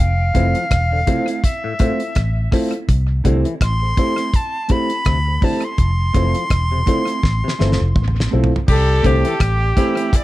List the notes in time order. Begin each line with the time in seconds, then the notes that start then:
0.00 F1 F5
0.34 F1 E3 A3 C4 E4 F4 A4 C5, kick, closed hi-hat
0.55 F3, closed hi-hat
0.71 E1, kick, cross-stick, closed hi-hat
0.92 D3 A4 C5
1.07 C3 A3 C4 E4 F4 A4 C5, kick, closed hi-hat
1.27 A3 C4 E4, closed hi-hat
1.44 E5, kick, closed hi-hat
1.64 A2
1.79 A2 A3 C4 E4 F4 A4 C5, kick, closed hi-hat
2.00 closed hi-hat
2.15 A1, kick, cross-stick, closed hi-hat
2.51 A3 C4 E4 F4 A4 C5, kick, cross-stick, open hi-hat
2.72 closed hi-hat
2.89 C2, kick, closed hi-hat
3.24 C2 D3 A3 C4 E4 G4 A4 C5, kick, closed hi-hat
3.45 E3, closed hi-hat
3.61 A1 C6, kick, cross-stick, closed hi-hat
3.82 A4 C5
3.97 A3 C4 E4 G4 A4 C5, kick, closed hi-hat
4.17 A3 C4 E4, closed hi-hat
4.34 A5, kick, closed hi-hat
4.68 A3 C4 E4 G4 A4 C5 B5, kick, closed hi-hat
4.90 closed hi-hat
5.05 D2 C3, kick, cross-stick, closed hi-hat
5.27 A4 C5
5.41 D3 A3 C4 E4 G4 A4 C5 A5, kick, open hi-hat
5.62 C6, closed hi-hat
5.78 F1, kick, closed hi-hat
6.13 F1 E3 A3 C4 E4 F4 A4 C5, kick, closed hi-hat
6.35 F3, closed hi-hat
6.50 E1, kick, cross-stick, closed hi-hat
6.72 C3 A4 C5
6.86 D3 A3 C4 E4 F4 A4 C5, kick, closed hi-hat
7.06 A3 C4 E4, closed hi-hat
7.23 A1, kick, snare
7.44 C3
7.48 snare
7.58 G1 E3 A3 C4 E4 F4 A4 C5, snare
7.72 snare
7.81 F1
7.96 A1, kick, mid tom
8.08 mid tom
8.20 snare
8.31 B1 A3 C4 E4 F4 A4 C5
8.44 floor tom
8.56 floor tom
8.68 C2 G3 G4 A4, kick, crash
9.03 C2 D3 A3 C4 E4 G4 A4 C5, kick, closed hi-hat
9.25 E3 A3 A4, closed hi-hat
9.40 A1 G3 G4, kick, cross-stick, closed hi-hat
9.76 E3 A3 C4 E4 G4 A4 C5, kick, closed hi-hat
9.96 A3 C4 E4, closed hi-hat
10.13 D5, kick, closed hi-hat